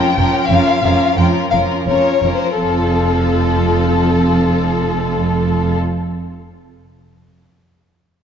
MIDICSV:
0, 0, Header, 1, 6, 480
1, 0, Start_track
1, 0, Key_signature, -1, "major"
1, 0, Tempo, 673401
1, 1332, Tempo, 719424
1, 1814, Time_signature, 4, 2, 24, 8
1, 2772, Tempo, 705882
1, 5630, End_track
2, 0, Start_track
2, 0, Title_t, "Violin section"
2, 0, Program_c, 0, 48
2, 0, Note_on_c, 0, 79, 58
2, 346, Note_off_c, 0, 79, 0
2, 360, Note_on_c, 0, 77, 54
2, 834, Note_on_c, 0, 79, 44
2, 836, Note_off_c, 0, 77, 0
2, 891, Note_off_c, 0, 79, 0
2, 1074, Note_on_c, 0, 77, 44
2, 1131, Note_off_c, 0, 77, 0
2, 1331, Note_on_c, 0, 73, 41
2, 1647, Note_off_c, 0, 73, 0
2, 1658, Note_on_c, 0, 72, 32
2, 1813, Note_off_c, 0, 72, 0
2, 1816, Note_on_c, 0, 69, 40
2, 3955, Note_off_c, 0, 69, 0
2, 5630, End_track
3, 0, Start_track
3, 0, Title_t, "Violin section"
3, 0, Program_c, 1, 48
3, 0, Note_on_c, 1, 65, 42
3, 0, Note_on_c, 1, 70, 43
3, 121, Note_off_c, 1, 65, 0
3, 121, Note_off_c, 1, 70, 0
3, 130, Note_on_c, 1, 70, 33
3, 133, Note_on_c, 1, 65, 31
3, 353, Note_off_c, 1, 70, 0
3, 356, Note_off_c, 1, 65, 0
3, 361, Note_on_c, 1, 70, 37
3, 364, Note_on_c, 1, 65, 38
3, 586, Note_off_c, 1, 70, 0
3, 587, Note_off_c, 1, 65, 0
3, 595, Note_on_c, 1, 65, 33
3, 595, Note_on_c, 1, 70, 33
3, 831, Note_off_c, 1, 65, 0
3, 831, Note_off_c, 1, 70, 0
3, 838, Note_on_c, 1, 65, 33
3, 839, Note_on_c, 1, 70, 39
3, 1077, Note_off_c, 1, 65, 0
3, 1077, Note_off_c, 1, 70, 0
3, 1085, Note_on_c, 1, 70, 31
3, 1088, Note_on_c, 1, 65, 28
3, 1326, Note_off_c, 1, 70, 0
3, 1327, Note_off_c, 1, 65, 0
3, 1334, Note_on_c, 1, 70, 29
3, 1335, Note_on_c, 1, 65, 26
3, 1567, Note_off_c, 1, 70, 0
3, 1568, Note_off_c, 1, 65, 0
3, 1575, Note_on_c, 1, 70, 28
3, 1576, Note_on_c, 1, 65, 25
3, 1810, Note_off_c, 1, 70, 0
3, 1811, Note_off_c, 1, 65, 0
3, 1820, Note_on_c, 1, 65, 30
3, 1822, Note_on_c, 1, 69, 35
3, 3960, Note_off_c, 1, 65, 0
3, 3961, Note_off_c, 1, 69, 0
3, 5630, End_track
4, 0, Start_track
4, 0, Title_t, "Viola section"
4, 0, Program_c, 2, 48
4, 0, Note_on_c, 2, 53, 40
4, 0, Note_on_c, 2, 61, 41
4, 118, Note_off_c, 2, 53, 0
4, 118, Note_off_c, 2, 61, 0
4, 127, Note_on_c, 2, 53, 38
4, 127, Note_on_c, 2, 61, 38
4, 344, Note_off_c, 2, 53, 0
4, 345, Note_off_c, 2, 61, 0
4, 352, Note_on_c, 2, 53, 32
4, 353, Note_on_c, 2, 61, 35
4, 583, Note_off_c, 2, 53, 0
4, 583, Note_off_c, 2, 61, 0
4, 591, Note_on_c, 2, 53, 34
4, 592, Note_on_c, 2, 61, 36
4, 824, Note_off_c, 2, 53, 0
4, 824, Note_off_c, 2, 61, 0
4, 832, Note_on_c, 2, 61, 37
4, 833, Note_on_c, 2, 53, 35
4, 1071, Note_off_c, 2, 53, 0
4, 1072, Note_off_c, 2, 61, 0
4, 1080, Note_on_c, 2, 53, 28
4, 1080, Note_on_c, 2, 61, 30
4, 1326, Note_off_c, 2, 53, 0
4, 1326, Note_off_c, 2, 61, 0
4, 1333, Note_on_c, 2, 61, 29
4, 1334, Note_on_c, 2, 53, 26
4, 1562, Note_off_c, 2, 61, 0
4, 1564, Note_off_c, 2, 53, 0
4, 1570, Note_on_c, 2, 61, 27
4, 1572, Note_on_c, 2, 53, 25
4, 1808, Note_off_c, 2, 61, 0
4, 1809, Note_off_c, 2, 53, 0
4, 1817, Note_on_c, 2, 53, 35
4, 1819, Note_on_c, 2, 60, 35
4, 3956, Note_off_c, 2, 53, 0
4, 3958, Note_off_c, 2, 60, 0
4, 5630, End_track
5, 0, Start_track
5, 0, Title_t, "Cello section"
5, 0, Program_c, 3, 48
5, 132, Note_on_c, 3, 41, 42
5, 189, Note_off_c, 3, 41, 0
5, 363, Note_on_c, 3, 41, 38
5, 420, Note_off_c, 3, 41, 0
5, 597, Note_on_c, 3, 41, 42
5, 654, Note_off_c, 3, 41, 0
5, 840, Note_on_c, 3, 41, 37
5, 897, Note_off_c, 3, 41, 0
5, 1084, Note_on_c, 3, 41, 32
5, 1141, Note_off_c, 3, 41, 0
5, 1334, Note_on_c, 3, 41, 32
5, 1388, Note_off_c, 3, 41, 0
5, 1572, Note_on_c, 3, 41, 29
5, 1626, Note_off_c, 3, 41, 0
5, 1815, Note_on_c, 3, 41, 33
5, 3954, Note_off_c, 3, 41, 0
5, 5630, End_track
6, 0, Start_track
6, 0, Title_t, "Double bass section"
6, 0, Program_c, 4, 48
6, 124, Note_on_c, 4, 29, 38
6, 181, Note_off_c, 4, 29, 0
6, 354, Note_on_c, 4, 29, 41
6, 411, Note_off_c, 4, 29, 0
6, 592, Note_on_c, 4, 29, 40
6, 649, Note_off_c, 4, 29, 0
6, 833, Note_on_c, 4, 29, 36
6, 890, Note_off_c, 4, 29, 0
6, 1080, Note_on_c, 4, 29, 30
6, 1137, Note_off_c, 4, 29, 0
6, 1329, Note_on_c, 4, 29, 34
6, 1383, Note_off_c, 4, 29, 0
6, 1570, Note_on_c, 4, 29, 31
6, 1623, Note_off_c, 4, 29, 0
6, 1809, Note_on_c, 4, 29, 35
6, 3948, Note_off_c, 4, 29, 0
6, 5630, End_track
0, 0, End_of_file